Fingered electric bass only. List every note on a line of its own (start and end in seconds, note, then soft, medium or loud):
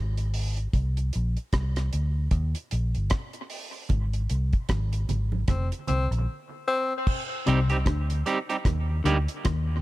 0.00 0.66 G#1 loud
0.75 1.09 C2 loud
1.16 1.35 A#1 medium
1.54 1.89 C2 medium
1.94 2.28 D2 medium
2.32 2.53 D#2 loud
2.72 2.93 A#1 medium
2.96 3.10 G1 medium
3.90 4.26 G#1 loud
4.31 4.51 C2 medium
4.70 5.05 G#1 medium
5.09 5.44 G#1 medium
5.49 5.70 F1 medium
5.89 6.10 C2 medium
6.11 6.25 A#1 medium
7.48 7.82 C2 loud
7.87 8.22 D2 loud
8.66 9.01 D#2 loud
9.05 9.26 D2 medium
9.46 9.82 D#2 loud